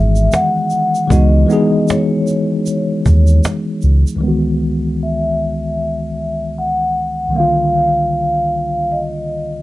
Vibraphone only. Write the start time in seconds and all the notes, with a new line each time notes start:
Already playing: E5
0.34 F#5
1.12 D#5
1.90 C#5
5.03 E5
6.58 F#5
7.36 F5
8.92 D#5